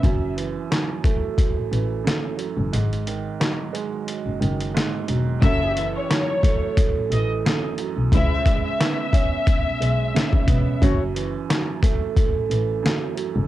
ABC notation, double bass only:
X:1
M:4/4
L:1/16
Q:"Swing 16ths" 1/4=89
K:F#dor
V:1 name="Double bass" clef=bass
F,,,3 z6 A,,, A,,,2 z3 F,,, | G,,,3 z6 F,,, F,,,2 z2 E,,,2 | F,,,3 z6 A,,, A,,,2 z3 B,,, | C,,3 z6 B,,, B,,,2 z2 E,,,2 |
F,,,3 z6 A,,, A,,,2 z3 F,,, |]